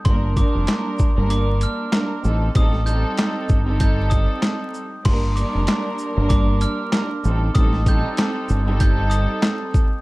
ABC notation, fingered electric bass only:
X:1
M:4/4
L:1/16
Q:"Swing 16ths" 1/4=96
K:Gm
V:1 name="Fingered electric bass" clef=bass
G,,,3 F,,, z3 G,,,4 z3 A,,,2 | A,,,4 z2 G,,,4- G,,, z4 z | G,,,3 F,,, z3 G,,,4 z3 A,,,2 | A,,,4 z2 G,,,4- G,,, z4 z |]